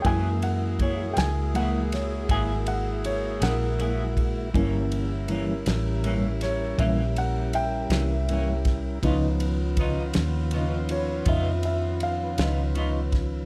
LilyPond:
<<
  \new Staff \with { instrumentName = "Grand piano" } { \time 12/8 \key ges \major \tempo 4. = 54 <g'' aes''>8 ges''8 des''8 <g'' aes''>8 ges''8 des''8 aes''8 ges''8 des''8 <bes' ges''>4.~ | <bes' ges''>4. r4 des''8 e''8 ges''8 <e'' g''>2 | r2 r8 des''8 fes''8 fes''8 f''2 | }
  \new Staff \with { instrumentName = "Grand piano" } { \time 12/8 \key ges \major <fes aes bes>2 <fes aes bes>8 r2. r8 | <e bes des'>8 r1 r4. | <f ces' ees'>8 r1 r4. | }
  \new Staff \with { instrumentName = "Saxophone section" } { \time 12/8 \key ges \major << { aes'1. | g'1. | f'1. | } \\ { <bes fes'>1.~ | <bes fes'>1. | ces'1. | } >> }
  \new Staff \with { instrumentName = "Tonewheel organ" } { \time 12/8 \key ges \major <aes bes fes' ges'>1. | <g des' e' bes'>1. | <ees f des' ces''>1. | }
  \new Staff \with { instrumentName = "Clean electric guitar" } { \time 12/8 \key ges \major <ges bes fes' aes'>8 r8 <ges bes fes' aes'>8 r8 <ges bes fes' aes'>8 r8 <ges bes fes' aes'>8 r4 <bes fes' aes'>8 <ges bes fes' aes'>8 r8 | <g, e bes des'>8 r8 <g, e bes des'>8 r8 <g, e bes des'>8 r8 <g, e bes des'>8 r4 <e bes des'>8 <g, e bes des'>8 r8 | <des ces' ees' f'>8 r8 <des ces' ees' f'>8 r8 <des ces' ees' f'>8 r8 <des ces' ees' f'>8 r4 <ces' ees' f'>8 <des ces' ees' f'>8 r8 | }
  \new Staff \with { instrumentName = "Fingered electric bass" } { \clef bass \time 12/8 \key ges \major ges,4. des,4. aes,,4. bes,,4. | g,,4. a,,4. bes,,4. c,4. | des,4. ees,4. f,4. des,4. | }
  \new DrumStaff \with { instrumentName = "Drums" } \drummode { \time 12/8 <bd cymr>8 cymr8 <bd cymr>8 <cymr sn>8 cymr8 <cymr sn>8 <bd cymr>8 cymr8 cymr8 <cymr sn>8 cymr8 <bd cymr>8 | <bd cymr>8 cymr8 cymr8 <cymr sn>8 cymr8 <cymr sn>8 <bd cymr>8 cymr8 cymr8 <cymr sn>8 cymr8 <bd cymr sn>8 | <bd cymr>8 cymr8 <bd cymr>8 <cymr sn>8 cymr8 cymr8 <bd cymr>8 cymr8 cymr8 <cymr sn>8 cymr8 <bd cymr sn>8 | }
>>